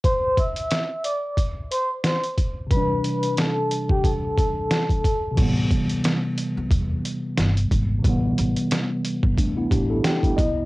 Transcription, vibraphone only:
X:1
M:4/4
L:1/16
Q:"Swing 16ths" 1/4=90
K:Am
V:1 name="Vibraphone"
[cc']2 [ee']4 [dd']2 z2 [cc'] z [cc']2 z2 | [Bb]4 [Aa]3 [Gg] [Aa]2 [Aa]6 | z16 | z16 |]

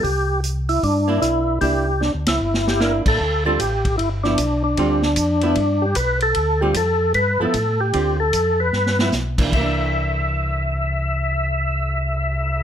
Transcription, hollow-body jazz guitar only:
X:1
M:4/4
L:1/8
Q:"Swing" 1/4=152
K:Cmix
V:1 name="Hollow-body jazz guitar"
z4 z [B,DE]3 | [B,DE] z4 z [B,DE]2 | z [D,G,CF] z3 [F,=B,E] z2 | [D,G,CF] z2 [F,=B,E] z4 |
z [D,G,CF] z3 [F,=B,E] z2 | [D,CFG] z4 [F,=B,E] z [E,_B,D] | [E,B,D]8- | [E,B,D]8 |]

